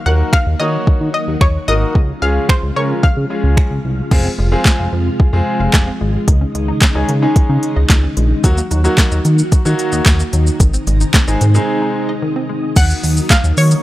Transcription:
Already playing: string machine D#3 F#3 A#3 F#4
0.06 analog synth bass D#2, grand piano A#3 D#4 F#4 A#4, synth pluck F#5
0.33 synth pluck F5, finger snap, kick
0.47 analog synth bass D#2
0.60 analog synth bass D#3, grand piano A#3 D#4 F#4 C#5, synth pluck D#5
0.87 analog synth bass D#3, kick
1.01 analog synth bass D#3
1.14 synth pluck D#5
1.28 analog synth bass D#2
1.41 analog synth bass D#2, synth pluck C#5, finger snap, kick
1.68 analog synth bass G#1, grand piano A#3 D#4 F#4 A#4, synth pluck D#5
1.95 analog synth bass C#2, string machine C#3 F3 G#3 F4, kick
2.22 analog synth bass C#2, grand piano G#3 C#4 F4 G#4, synth pluck F5
2.49 synth pluck C5, finger snap, kick
2.63 analog synth bass C#2
2.76 analog synth bass C#3, grand piano G#3 C#4 F4 A#4, synth pluck C#5
3.03 analog synth bass C#3, synth pluck F5, kick
3.17 analog synth bass C#3
3.30 grand piano G#3 C#4 F4 G#4
3.44 analog synth bass C#2
3.57 finger snap, kick
3.71 analog synth bass C#2
3.84 analog synth bass C2
4.11 analog synth bass F1, synth arpeggio sound F3, grand piano G#3 C4 F4 G#4, kick, crash
4.25 synth arpeggio sound C4
4.38 analog synth bass F1, synth arpeggio sound G#3, grand piano F4 G#4
4.52 grand piano G#3 C4 F4 G#4, synth arpeggio sound F4
4.65 synth arpeggio sound C4, kick, snare, clap
4.79 analog synth bass F1, synth arpeggio sound F5
4.93 analog synth bass F2, synth arpeggio sound F3
5.19 analog synth bass F2, grand piano F4 G#4, kick
5.33 analog synth bass F2, grand piano G#3 C4 F4 G#4, synth arpeggio sound F4
5.60 analog synth bass F1, synth arpeggio sound F5
5.73 analog synth bass F1, synth arpeggio sound F3, kick, snare, clap
5.87 synth arpeggio sound C4
6.01 analog synth bass G#1, synth arpeggio sound G#3
6.28 analog synth bass C#2, string machine C#3 D#3 D#4, synth arpeggio sound D#3, kick, closed hi-hat
6.41 synth arpeggio sound C#4
6.55 analog synth bass C#2, synth arpeggio sound G#3, closed hi-hat
6.68 synth arpeggio sound D#4
6.82 synth arpeggio sound C#4, kick, snare, clap, closed hi-hat
6.95 analog synth bass C#2, grand piano G#3 C#4 D#4 G#4, synth arpeggio sound D#5
7.09 analog synth bass C#3, synth arpeggio sound D#3, closed hi-hat
7.22 grand piano G#3 C#4 D#4 G#4
7.36 kick, closed hi-hat
7.49 analog synth bass C#3, synth arpeggio sound D#4
7.63 closed hi-hat
7.76 analog synth bass C#2, synth arpeggio sound D#5
7.90 analog synth bass C#2, synth arpeggio sound D#3, kick, snare, clap, closed hi-hat
8.03 synth arpeggio sound C#4
8.17 analog synth bass A#1, synth arpeggio sound G#3, closed hi-hat
8.44 analog synth bass D#2, synth arpeggio sound D#3, grand piano F#3 A#3 D#4 F#4, string machine F#3 A#3 F#4, kick, closed hi-hat, shaker
8.58 synth arpeggio sound A#3, shaker
8.71 analog synth bass D#2, synth arpeggio sound F#3, grand piano D#4 F#4, closed hi-hat, shaker
8.84 grand piano F#3 A#3 D#4 F#4, synth arpeggio sound D#4, shaker
8.98 synth arpeggio sound A#3, kick, snare, clap, closed hi-hat, shaker
9.12 analog synth bass D#2, synth arpeggio sound D#5, shaker
9.25 analog synth bass D#3, synth arpeggio sound D#3, closed hi-hat, shaker
9.39 shaker
9.52 analog synth bass D#3, grand piano D#4 F#4, kick, closed hi-hat, shaker
9.65 analog synth bass D#3, grand piano F#3 A#3 D#4 F#4, synth arpeggio sound D#4, shaker
9.79 closed hi-hat, shaker
9.92 analog synth bass D#2, synth arpeggio sound D#5, shaker
10.06 analog synth bass D#2, synth arpeggio sound D#3, kick, snare, clap, closed hi-hat, shaker
10.20 synth arpeggio sound A#3, shaker
10.33 analog synth bass D#2, synth arpeggio sound F#3, closed hi-hat, shaker
10.47 shaker
10.60 analog synth bass G#1, synth arpeggio sound D#3, string machine G#3 D#4, kick, closed hi-hat, shaker
10.74 synth arpeggio sound C4, shaker
10.87 analog synth bass G#1, synth arpeggio sound G#3, closed hi-hat, shaker
11.01 synth arpeggio sound D#4, shaker
11.14 synth arpeggio sound C4, kick, snare, clap, closed hi-hat, shaker
11.28 analog synth bass G#1, grand piano G#3 C4 D#4 G#4, synth arpeggio sound D#5, shaker
11.41 analog synth bass G#2, synth arpeggio sound D#3, closed hi-hat, shaker
11.55 grand piano G#3 C4 D#4 G#4, shaker
11.82 synth arpeggio sound D#4
12.09 synth arpeggio sound D#5
12.22 synth arpeggio sound D#3
12.36 synth arpeggio sound C4
12.49 synth arpeggio sound G#3
12.76 analog synth bass D#2, string machine D#3 F#3 D#4, synth pluck F#5, kick, closed hi-hat, crash, shaker
12.90 shaker
13.03 analog synth bass D#2, open hi-hat, shaker
13.17 shaker
13.30 synth pluck F5, kick, snare, clap, closed hi-hat, shaker
13.44 analog synth bass D#2, shaker
13.57 analog synth bass D#3, synth pluck C#5, open hi-hat, shaker
13.71 shaker

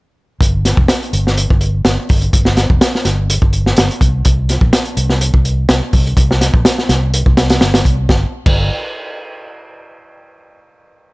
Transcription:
0.41 fingered electric bass G1, kick, closed hi-hat
0.65 snare, closed hi-hat
0.77 fingered electric bass F1, kick
0.88 snare, closed hi-hat
1.03 closed hi-hat
1.13 fingered electric bass G1, closed hi-hat
1.27 snare
1.38 closed hi-hat
1.50 fingered electric bass G1, kick
1.61 closed hi-hat
1.85 fingered electric bass G1, snare, closed hi-hat
2.09 fingered electric bass G1, kick, open hi-hat
2.22 closed hi-hat
2.33 fingered electric bass G1, kick, closed hi-hat
2.45 snare
2.57 snare, closed hi-hat
2.70 fingered electric bass F1, kick
2.81 snare, closed hi-hat
2.95 snare
3.05 fingered electric bass G1, snare, closed hi-hat
3.30 closed hi-hat
3.42 fingered electric bass G1, kick
3.53 closed hi-hat
3.66 snare
3.77 fingered electric bass G1, snare, closed hi-hat
3.91 closed hi-hat
4.01 fingered electric bass C2, kick, closed hi-hat
4.25 fingered electric bass C2, kick, closed hi-hat
4.49 snare, closed hi-hat
4.61 fingered electric bass A#1, kick
4.73 snare, closed hi-hat
4.85 closed hi-hat
4.97 fingered electric bass C2, closed hi-hat
5.10 snare
5.21 closed hi-hat
5.34 fingered electric bass C2, kick
5.45 closed hi-hat
5.69 fingered electric bass C2, snare, closed hi-hat
5.93 fingered electric bass C2, kick, open hi-hat
6.07 closed hi-hat
6.17 fingered electric bass C2, kick, closed hi-hat
6.31 snare
6.41 snare, closed hi-hat
6.54 fingered electric bass A#1, kick
6.65 snare, closed hi-hat
6.78 snare
6.89 fingered electric bass C2, snare, closed hi-hat
7.14 closed hi-hat
7.26 fingered electric bass C2, kick
7.37 snare, closed hi-hat
7.50 snare, closed hi-hat
7.61 fingered electric bass G1, snare, closed hi-hat
7.74 snare, closed hi-hat
7.85 fingered electric bass C2, kick, closed hi-hat
8.09 fingered electric bass G1, kick, snare
8.46 fingered electric bass G1, kick, crash

